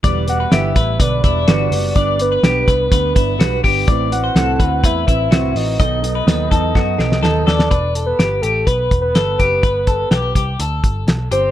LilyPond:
<<
  \new Staff \with { instrumentName = "Soft synth lead" } { \time 4/4 \key e \minor \tempo 4 = 125 r8 fis''8 e''4 d''2 | d''8 b'2. r8 | r8 fis''4. e''4. ees''8~ | ees''2.~ ees''8 d''8~ |
d''8. b'8. a'8 b'8. b'8. b'8~ | b'4. r2 c''8 | }
  \new Staff \with { instrumentName = "Clean electric guitar" } { \time 4/4 \key e \minor d''8. b'16 g'8 b'8 b'8 e'8 fis'4 | d''8. b'16 g'8 b'8 b'8 e'8 fis'8 g'8 | d''8. c''16 a'8 b'8 b'8 e'8 fis'4 | dis''8. b'16 b'8 a'8 fis'8 g'8 a'8 a'8 |
b'8 a'8 g'8 g'8 b'4 a'8 g'8 | b'8 a'8 g'8 g'8 a'4. g'8 | }
  \new Staff \with { instrumentName = "Steel-string acoustic guitar" } { \time 4/4 \key e \minor <d e g b b'>8 <g b b'>8 <d e g b b'>8 <g b b'>8 <d g b b'>8 <g b b'>8 <d e g b b'>8 <g b b'>8 | <g b d' b'>8 <b d' b'>8 <g b d' b'>8 <b d' b'>8 <g b d' b'>8 <b d' b'>8 <g b d' b'>8 <b d' b'>8 | <a, a c' e' b'>8 <c' e' b'>8 <a, a c' e' b'>8 <c' e' b'>8 <a c' e' b'>8 <c' e' b'>8 <a, a c' e' b'>8 <c' e' b'>8 | <b, dis fis b dis' a'>8 <fis b dis' a'>8 <b, dis fis b dis' a'>8 <fis b dis' a'>8 <fis b dis' a'>8 <fis b dis' a'>8 <b, dis fis b dis' a'>8 <fis b dis' a'>8 |
r1 | r1 | }
  \new Staff \with { instrumentName = "Picked electric bass" } { \clef bass \time 4/4 \key e \minor e,,4 g,,8 a,,8 b,,8 e,,8 g,,8 fis,,8 | g,,4 b,,8 c,8 d,8 g,,8 b,,8 g,,8 | a,,4 c,8 d,8 e,8 a,,8 c,8 a,,8 | b,,4 dis,8 e,8 fis,8 b,,8 dis,8 dis,8 |
e,,4 g,,8 a,,8 b,,8 e,,8 g,,8 fis,,8 | g,,4 b,,8 c,8 d,8 g,,8 b,,8 g,,8 | }
  \new DrumStaff \with { instrumentName = "Drums" } \drummode { \time 4/4 <hh bd>8 hh8 <hh sn>8 <hh bd>8 <hh bd>8 <hh bd>8 <hh sn>8 hho8 | <hh bd>8 hh8 <hh sn>8 <hh bd>8 <hh bd>8 <hh bd>8 <hh sn>8 <hho bd>8 | <hh bd>8 hh8 <hh sn>8 <hh bd>8 <hh bd>8 <hh bd>8 <hh sn>8 hho8 | <hh bd>8 hh8 <hh sn>8 <hh bd>8 <bd sn>8 sn16 sn16 sn8 sn16 sn16 |
<hh bd>8 hh8 <hh sn>8 hh8 <hh bd>8 <hh bd>8 <hh sn>8 <hh bd>8 | <hh bd>8 <hh bd>8 <hh sn>8 <hh bd>8 hh8 <hh bd>8 <hh sn>8 hh8 | }
>>